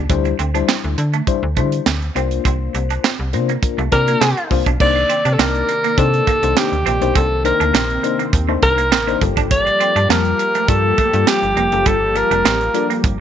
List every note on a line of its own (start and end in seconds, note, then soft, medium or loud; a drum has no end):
0.09 0.34 D2 loud
0.09 0.35 G3 loud
0.09 0.35 D4 medium
0.09 0.35 E4 medium
0.09 0.35 C5 loud
0.09 kick loud
0.09 closed hi-hat medium
0.25 muted clean electric guitar stroke soft
0.25 closed hi-hat soft
0.39 0.63 D2 loud
0.39 0.49 C4 medium
0.39 closed hi-hat medium
0.54 0.96 G3 medium
0.54 0.96 D4 medium
0.54 0.64 D4 medium
0.54 0.96 E4 medium
0.54 0.96 C5 medium
0.54 closed hi-hat medium
0.68 0.79 C4 medium
0.68 snare loud
0.68 clap medium
0.84 0.96 D2 medium
0.84 closed hi-hat soft
0.98 1.22 D3 loud
0.98 muted clean electric guitar stroke soft
0.98 closed hi-hat medium
1.13 1.23 A3 medium
1.13 closed hi-hat soft
1.27 1.45 G3 medium
1.27 1.45 D4 medium
1.27 1.45 E4 medium
1.27 1.45 C5 loud
1.27 kick loud
1.27 closed hi-hat medium
1.43 1.58 D2 medium
1.57 1.81 D3 medium
1.57 1.91 G3 medium
1.57 1.67 A3 medium
1.57 1.91 D4 medium
1.57 1.91 E4 medium
1.57 1.91 C5 medium
1.57 kick loud
1.57 closed hi-hat medium
1.72 closed hi-hat medium
1.86 2.10 D2 loud
1.86 snare loud
1.86 clap medium
2.02 closed hi-hat soft
2.15 2.40 C2 loud
2.15 3.10 A#3 medium
2.15 2.26 C4 medium
2.15 3.10 D4 medium
2.15 3.10 F4 medium
2.15 3.10 C5 loud
2.15 closed hi-hat medium
2.31 closed hi-hat medium
2.45 2.69 C2 loud
2.45 2.56 C4 medium
2.45 kick loud
2.45 closed hi-hat medium
2.74 2.98 C2 loud
2.74 muted clean electric guitar stroke soft
2.74 closed hi-hat medium
2.90 3.00 D4 medium
2.90 closed hi-hat soft
3.04 3.14 C4 medium
3.04 snare loud
3.04 clap medium
3.19 3.35 C2 medium
3.33 3.57 C3 medium
3.33 3.51 A#3 medium
3.33 3.51 D4 medium
3.33 3.51 F4 medium
3.33 3.51 C5 loud
3.33 muted clean electric guitar stroke medium
3.33 closed hi-hat medium
3.49 3.59 A#3 medium
3.49 closed hi-hat soft
3.62 3.80 A#3 medium
3.62 3.80 D4 medium
3.62 3.80 F4 medium
3.62 3.80 A#4 medium
3.62 kick loud
3.62 closed hi-hat medium
3.78 3.89 C2 loud
3.78 3.88 A3 medium
3.78 closed hi-hat soft
3.92 4.16 C3 loud
3.92 4.26 A#3 loud
3.92 4.26 D4 medium
3.92 4.26 F4 medium
3.92 4.47 A#4 loud
3.92 4.26 D5 loud
3.92 muted clean electric guitar stroke soft
3.92 kick medium
3.92 closed hi-hat medium
4.08 4.17 A#3 medium
4.08 closed hi-hat medium
4.21 4.34 C3 loud
4.21 4.32 C4 medium
4.21 4.49 C6 medium
4.21 snare loud
4.21 clap loud
4.37 muted clean electric guitar stroke soft
4.37 closed hi-hat soft
4.50 4.64 C2 medium
4.50 4.68 A#3 medium
4.50 4.68 D4 medium
4.50 4.68 F4 medium
4.50 4.69 C5 medium
4.50 4.78 F5 medium
4.50 kick medium
4.50 open hi-hat medium
4.66 4.78 B1 medium
4.66 4.76 D4 medium
4.66 kick medium
4.66 closed hi-hat medium
4.80 5.04 C2 loud
4.80 9.17 C3 medium
4.80 9.17 D#3 medium
4.80 5.14 A#3 medium
4.80 13.20 A#3 medium
4.80 5.14 D4 medium
4.80 5.14 D#4 medium
4.80 5.14 C5 medium
4.80 7.13 D5 medium
4.80 5.35 D5 loud
4.80 kick loud
4.80 crash medium
4.96 muted clean electric guitar stroke soft
5.09 5.20 C4 medium
5.09 closed hi-hat medium
5.25 5.37 C3 medium
5.25 5.35 D4 medium
5.25 closed hi-hat medium
5.34 5.42 A4 medium
5.39 5.63 C2 medium
5.39 5.73 A#3 medium
5.39 5.50 C4 medium
5.39 5.73 D4 medium
5.39 5.73 D#4 medium
5.39 6.00 A#4 loud
5.39 5.73 A5 medium
5.39 snare loud
5.39 clap loud
5.55 closed hi-hat soft
5.69 muted clean electric guitar stroke soft
5.69 closed hi-hat medium
5.84 5.94 A#3 medium
5.84 closed hi-hat soft
5.98 6.22 C3 medium
5.98 6.23 A#3 medium
5.98 6.23 D4 medium
5.98 6.24 D#4 medium
5.98 6.59 A4 loud
5.98 6.24 C5 medium
5.98 kick loud
5.98 closed hi-hat medium
6.14 closed hi-hat soft
6.27 6.38 A#3 medium
6.27 kick loud
6.27 closed hi-hat medium
6.43 6.54 C2 medium
6.43 6.76 A#3 medium
6.43 6.76 D4 medium
6.43 6.76 D#4 medium
6.43 6.77 C5 medium
6.43 closed hi-hat medium
6.57 7.18 G4 medium
6.57 snare loud
6.57 clap medium
6.72 6.84 D2 medium
6.72 closed hi-hat soft
6.86 6.99 A#1 medium
6.86 6.96 C4 medium
6.86 closed hi-hat medium
7.01 7.13 B1 medium
7.01 7.26 A#3 medium
7.01 7.27 D4 medium
7.01 7.27 D#4 medium
7.01 7.27 C5 medium
7.01 closed hi-hat medium
7.15 7.52 C2 loud
7.15 7.26 C4 medium
7.15 9.19 C4 medium
7.15 7.45 A4 loud
7.15 kick loud
7.15 closed hi-hat medium
7.44 7.79 A#3 medium
7.44 7.79 D4 medium
7.44 7.79 D#4 medium
7.44 8.30 A#4 medium
7.44 7.79 C5 loud
7.44 muted clean electric guitar stroke soft
7.44 closed hi-hat medium
7.60 7.72 D2 medium
7.60 7.70 D4 medium
7.60 closed hi-hat medium
7.74 7.98 A#1 medium
7.74 7.85 C4 medium
7.74 snare loud
7.74 clap loud
7.90 closed hi-hat soft
8.03 8.29 A#3 medium
8.03 8.29 D4 medium
8.03 8.29 D#4 medium
8.03 8.29 C5 medium
8.03 muted clean electric guitar stroke soft
8.03 closed hi-hat medium
8.19 8.29 A#3 medium
8.19 closed hi-hat soft
8.33 8.57 D#2 medium
8.33 kick loud
8.33 closed hi-hat medium
8.48 8.58 A3 medium
8.48 8.82 A#3 medium
8.48 8.82 D4 medium
8.48 8.82 D#4 medium
8.48 8.82 C5 medium
8.62 8.93 C2 loud
8.62 9.18 A#4 loud
8.62 muted clean electric guitar stroke soft
8.62 kick loud
8.62 closed hi-hat medium
8.78 8.87 A#3 medium
8.78 closed hi-hat medium
8.92 9.16 A1 medium
8.92 9.02 C4 medium
8.92 snare loud
8.92 clap loud
9.07 9.20 A#3 medium
9.07 9.21 D4 medium
9.07 9.21 D#4 medium
9.07 9.22 C5 medium
9.07 muted clean electric guitar stroke soft
9.07 closed hi-hat soft
9.21 9.70 G1 loud
9.21 13.20 F3 medium
9.21 9.92 G3 medium
9.21 13.20 G3 medium
9.21 9.92 A#3 medium
9.21 9.93 F4 medium
9.21 13.20 G4 medium
9.21 9.93 A4 medium
9.21 kick medium
9.21 closed hi-hat medium
9.37 9.46 D4 medium
9.37 kick medium
9.37 closed hi-hat medium
9.51 10.06 D5 loud
9.51 kick loud
9.51 closed hi-hat loud
9.67 muted clean electric guitar stroke soft
9.67 closed hi-hat soft
9.80 9.91 C4 medium
9.80 closed hi-hat medium
9.96 10.07 G2 loud
9.96 10.05 D4 medium
9.96 closed hi-hat medium
10.09 10.34 F2 medium
10.09 10.43 G3 medium
10.09 10.43 A#3 medium
10.09 10.20 A#3 medium
10.09 10.44 F4 medium
10.09 10.71 A#4 loud
10.09 10.44 A5 medium
10.09 snare loud
10.09 clap loud
10.25 closed hi-hat soft
10.39 muted clean electric guitar stroke soft
10.39 closed hi-hat medium
10.55 10.64 A3 medium
10.55 closed hi-hat soft
10.68 10.92 G2 loud
10.68 10.94 G3 medium
10.68 10.94 A#3 medium
10.68 10.94 F4 medium
10.68 10.94 A4 medium
10.68 11.30 A4 loud
10.68 kick loud
10.68 closed hi-hat medium
10.98 11.09 A3 medium
10.98 kick loud
10.98 closed hi-hat medium
11.13 11.25 G2 loud
11.13 11.47 G3 medium
11.13 11.47 A#3 medium
11.13 11.47 F4 medium
11.13 11.47 G4 medium
11.13 closed hi-hat medium
11.27 11.89 G4 medium
11.27 snare loud
11.27 clap medium
11.43 11.54 G1 medium
11.43 closed hi-hat soft
11.56 11.69 F1 loud
11.56 11.67 A#3 medium
11.56 closed hi-hat medium
11.72 11.84 F#1 medium
11.72 11.97 G3 medium
11.72 11.97 A#3 medium
11.72 11.97 F4 medium
11.72 11.98 A4 medium
11.72 closed hi-hat medium
11.86 12.23 G1 medium
11.86 11.96 G3 medium
11.86 12.19 A4 loud
11.86 kick loud
11.86 closed hi-hat medium
12.15 12.49 G3 medium
12.15 12.50 A#3 medium
12.15 12.50 F4 medium
12.15 13.05 A#4 medium
12.15 12.50 A5 loud
12.15 muted clean electric guitar stroke soft
12.15 closed hi-hat medium
12.31 12.42 F1 loud
12.31 12.40 D4 medium
12.31 closed hi-hat medium
12.45 12.69 A1 medium
12.45 12.55 C4 medium
12.45 snare loud
12.45 clap medium
12.61 closed hi-hat soft
12.74 13.00 G3 medium
12.74 13.00 A#3 medium
12.74 12.88 D4 medium
12.74 13.00 F4 medium
12.74 13.00 A4 medium
12.74 12.88 A#4 medium
12.74 12.88 D5 medium
12.74 muted clean electric guitar stroke soft
12.74 closed hi-hat medium
12.90 12.99 A#3 medium
12.90 closed hi-hat soft
13.04 13.20 G1 medium
13.04 kick loud
13.04 closed hi-hat medium